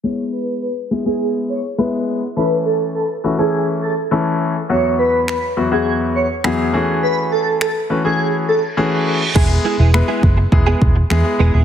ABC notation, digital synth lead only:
X:1
M:4/4
L:1/16
Q:1/4=103
K:E
V:1 name="Digital synth lead"
c2 B2 B z2 G2 z c z4 z | B2 A2 A z2 G2 z A z4 z | c2 B2 B z2 G2 z c z4 z | B2 A2 A z2 G2 z A z4 z |
z16 |]